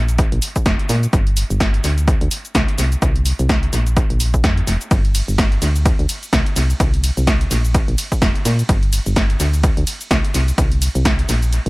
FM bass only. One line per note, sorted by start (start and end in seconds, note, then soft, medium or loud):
0.00 0.25 A#1 medium
0.32 0.39 A#1 loud
0.66 0.75 F1 loud
0.89 1.07 A#2 medium
1.13 1.44 G1 loud
1.50 1.79 G1 loud
1.84 2.14 D2 medium
2.21 2.28 D2 medium
2.55 2.64 C2 loud
2.78 2.96 C2 medium
3.02 3.33 C2 loud
3.39 3.68 C2 loud
3.73 4.03 A#1 medium
4.10 4.45 A#1 medium
4.44 4.61 F2 loud
4.67 4.77 F1 loud
4.91 5.21 G1 loud
5.28 5.57 G1 medium
5.62 5.92 D2 medium
5.99 6.06 D2 medium
6.33 6.42 C2 loud
6.56 6.74 C2 medium
6.80 7.10 C2 loud
7.17 7.46 C2 medium
7.51 7.81 A#1 medium
7.88 7.95 A#1 medium
8.22 8.31 F1 loud
8.45 8.63 A#2 medium
8.69 8.99 G1 loud
9.06 9.35 G1 medium
9.40 9.70 D2 medium
9.77 9.84 D2 medium
10.11 10.20 C2 loud
10.34 10.52 C2 medium
10.58 10.88 C2 loud
10.95 11.24 C2 loud
11.29 11.59 A#1 medium
11.66 11.69 A#1 loud